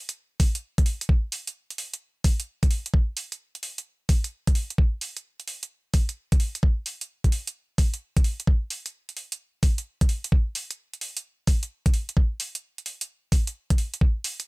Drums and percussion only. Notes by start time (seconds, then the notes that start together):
0.09 closed hi-hat
0.40 kick, open hi-hat
0.55 closed hi-hat
0.78 kick, closed hi-hat
0.86 open hi-hat
1.01 closed hi-hat
1.09 kick
1.32 open hi-hat
1.47 closed hi-hat
1.70 closed hi-hat
1.78 open hi-hat
1.94 closed hi-hat
2.24 kick, open hi-hat
2.40 closed hi-hat
2.63 kick, closed hi-hat
2.71 open hi-hat
2.86 closed hi-hat
2.94 kick
3.17 open hi-hat
3.32 closed hi-hat
3.55 closed hi-hat
3.63 open hi-hat
3.78 closed hi-hat
4.09 kick, open hi-hat
4.24 closed hi-hat
4.47 kick, closed hi-hat
4.55 open hi-hat
4.70 closed hi-hat
4.78 kick
5.01 open hi-hat
5.17 closed hi-hat
5.40 closed hi-hat
5.47 open hi-hat
5.63 closed hi-hat
5.94 kick, open hi-hat
6.09 closed hi-hat
6.32 kick, closed hi-hat
6.40 open hi-hat
6.55 closed hi-hat
6.63 kick
6.86 open hi-hat
7.01 closed hi-hat
7.24 kick, closed hi-hat
7.32 open hi-hat
7.47 closed hi-hat
7.78 kick, open hi-hat
7.94 closed hi-hat
8.17 kick, closed hi-hat
8.24 open hi-hat
8.40 closed hi-hat
8.47 kick
8.70 open hi-hat
8.86 closed hi-hat
9.09 closed hi-hat
9.17 open hi-hat
9.32 closed hi-hat
9.63 kick, open hi-hat
9.78 closed hi-hat
10.01 kick, closed hi-hat
10.09 open hi-hat
10.24 closed hi-hat
10.32 kick
10.55 open hi-hat
10.71 closed hi-hat
10.94 closed hi-hat
11.01 open hi-hat
11.17 closed hi-hat
11.47 kick, open hi-hat
11.63 closed hi-hat
11.86 kick, closed hi-hat
11.94 open hi-hat
12.09 closed hi-hat
12.17 kick
12.40 open hi-hat
12.55 closed hi-hat
12.78 closed hi-hat
12.86 open hi-hat
13.01 closed hi-hat
13.32 kick, open hi-hat
13.47 closed hi-hat
13.70 kick, closed hi-hat
13.78 open hi-hat
13.94 closed hi-hat
14.01 kick
14.24 open hi-hat
14.40 closed hi-hat